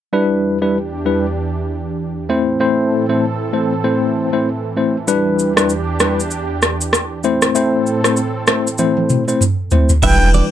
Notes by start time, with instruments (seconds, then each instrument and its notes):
0.13 analog synth pad E2 E3 D4 G4, tine electric piano G3 D4 E4 B4
0.62 tine electric piano G3 D4 E4 B4
1.05 tine electric piano G3 D4 E4 B4
2.29 analog synth pad A2 E3 C4 A4, tine electric piano A3 C4 E4 C5
2.60 tine electric piano A3 C4 E4 C5
3.09 tine electric piano A3 C4 E4 C5
3.53 tine electric piano A3 C4 E4 C5
3.84 tine electric piano A3 C4 E4 C5
4.33 tine electric piano A3 C4 E4 C5
4.77 tine electric piano A3 C4 E4 C5
5.08 analog synth pad E2 D4 G4, tine electric piano G3 D4 E4 B4, shaker
5.39 shaker
5.56 tine electric piano G3 D4 E4 B4, cross-stick, shaker
5.69 shaker
6.00 tine electric piano G3 D4 E4 B4, cross-stick, shaker
6.20 shaker
6.31 shaker
6.62 cross-stick, shaker
6.81 shaker
6.93 cross-stick, shaker
7.23 analog synth pad A2 C4 A4, tine electric piano A3 C4 E4 C5, shaker
7.42 cross-stick, shaker
7.55 tine electric piano A3 C4 E4 C5, shaker
7.86 shaker
8.04 tine electric piano A3 C4 E4 C5, cross-stick, shaker
8.17 shaker
8.47 tine electric piano A3 C4 E4 C5, cross-stick, shaker
8.67 shaker
8.78 tine electric piano A3 C4 E4 C5, high tom, shaker
8.97 high tom
9.09 mid tom, shaker
9.28 tine electric piano A3 C4 E4 C5, shaker
9.41 mid tom, shaker
9.71 tine electric piano A3 C4 E4 C5, floor tom, shaker
9.89 floor tom, shaker
10.02 sub bass E1, tine electric piano G3 D4 E4 B4, clean electric guitar E5, flute G5, kick, crash, low conga, shaker
10.34 clean electric guitar D5, low conga, shaker